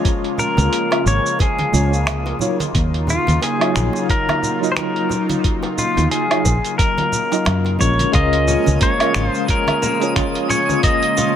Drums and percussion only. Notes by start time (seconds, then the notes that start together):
0.05 kick, closed hi-hat, high bongo, shaker
0.24 closed hi-hat
0.38 low conga, shaker
0.57 closed hi-hat, high bongo, high conga, shaker
0.73 closed hi-hat, shaker
0.91 closed hi-hat, high bongo, low woodblock
1.06 shaker
1.26 shaker
1.39 kick, closed hi-hat, high bongo, shaker
1.59 closed hi-hat, high conga
1.73 high bongo, low conga, shaker
1.93 shaker
2.06 finger snap, closed hi-hat, high conga, low woodblock, shaker
2.26 closed hi-hat, high bongo
2.39 low conga, shaker
2.60 closed hi-hat, high bongo, high conga, shaker
2.75 kick, closed hi-hat, shaker
2.94 closed hi-hat
3.07 high bongo, low conga, shaker
3.27 closed hi-hat, high conga, shaker
3.42 closed hi-hat, high bongo, shaker
3.61 closed hi-hat, low woodblock
3.75 finger snap, high conga, shaker
3.93 high bongo, shaker
4.09 kick, closed hi-hat, shaker
4.29 closed hi-hat, high bongo, high conga, low woodblock
4.43 low conga, shaker
4.63 shaker
4.76 finger snap, closed hi-hat, high bongo, high conga, shaker
4.96 closed hi-hat
5.09 high bongo, low conga, shaker
5.29 closed hi-hat, high conga, shaker
5.44 kick, closed hi-hat, shaker
5.63 closed hi-hat, high bongo
5.78 low conga, shaker
5.97 closed hi-hat, high bongo, high conga, shaker
6.11 closed hi-hat, shaker
6.31 closed hi-hat, low woodblock
6.45 kick, high bongo, shaker
6.65 closed hi-hat, shaker
6.79 kick, closed hi-hat, high bongo, shaker
6.98 closed hi-hat, high conga
7.12 low conga, shaker
7.32 closed hi-hat, high bongo, shaker
7.45 finger snap, closed hi-hat, high conga, low woodblock, shaker
7.65 closed hi-hat, high bongo
7.79 kick, low conga, shaker
7.99 closed hi-hat, high conga, shaker
8.13 kick, closed hi-hat, shaker
8.33 closed hi-hat
8.48 low conga, shaker
8.66 high conga, shaker
8.81 kick, closed hi-hat, shaker
9.00 closed hi-hat, low woodblock
9.14 finger snap, high conga, shaker
9.34 shaker
9.48 kick, closed hi-hat, shaker
9.67 closed hi-hat, high conga, low woodblock
9.82 high bongo, low conga, shaker
10.01 closed hi-hat, high bongo, shaker
10.16 finger snap, kick, closed hi-hat, high conga, shaker
10.35 closed hi-hat
10.50 low conga, shaker
10.69 high conga, shaker
10.83 kick, closed hi-hat, shaker
11.03 closed hi-hat
11.17 high bongo, low conga, shaker